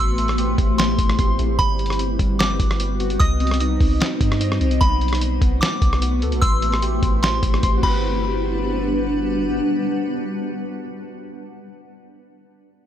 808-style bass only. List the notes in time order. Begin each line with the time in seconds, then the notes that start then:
Already playing: A1
0.58 A1
0.98 A1
1.19 A1
1.39 A1
1.59 G1
2.19 G1
2.60 G1
3.20 C2
3.80 C2
4.21 G2
4.61 C2
4.81 B1
5.42 B1
5.82 B1
6.22 D2
6.32 B1
6.42 A1
7.03 A1
7.43 A1
7.63 A1
7.83 G1